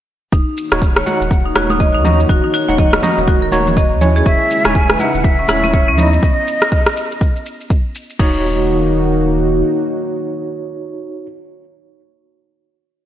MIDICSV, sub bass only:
0, 0, Header, 1, 2, 480
1, 0, Start_track
1, 0, Tempo, 491803
1, 318, Time_signature, 4, 2, 24, 8
1, 12743, End_track
2, 0, Start_track
2, 0, Title_t, "Sub bass"
2, 0, Program_c, 0, 38
2, 317, Note_on_c, 0, 27, 95
2, 427, Note_off_c, 0, 27, 0
2, 699, Note_on_c, 0, 27, 84
2, 1001, Note_off_c, 0, 27, 0
2, 1179, Note_on_c, 0, 27, 99
2, 1481, Note_off_c, 0, 27, 0
2, 1516, Note_on_c, 0, 27, 83
2, 1899, Note_on_c, 0, 39, 85
2, 1914, Note_off_c, 0, 27, 0
2, 2201, Note_off_c, 0, 39, 0
2, 2236, Note_on_c, 0, 27, 95
2, 2347, Note_off_c, 0, 27, 0
2, 2620, Note_on_c, 0, 27, 90
2, 2921, Note_off_c, 0, 27, 0
2, 3100, Note_on_c, 0, 27, 99
2, 3401, Note_off_c, 0, 27, 0
2, 3437, Note_on_c, 0, 27, 84
2, 3821, Note_on_c, 0, 39, 88
2, 3836, Note_off_c, 0, 27, 0
2, 4122, Note_off_c, 0, 39, 0
2, 4156, Note_on_c, 0, 27, 100
2, 4267, Note_off_c, 0, 27, 0
2, 4540, Note_on_c, 0, 27, 91
2, 4841, Note_off_c, 0, 27, 0
2, 5019, Note_on_c, 0, 27, 100
2, 5320, Note_off_c, 0, 27, 0
2, 5356, Note_on_c, 0, 27, 88
2, 5740, Note_on_c, 0, 39, 87
2, 5754, Note_off_c, 0, 27, 0
2, 6041, Note_off_c, 0, 39, 0
2, 7998, Note_on_c, 0, 27, 96
2, 9399, Note_off_c, 0, 27, 0
2, 12743, End_track
0, 0, End_of_file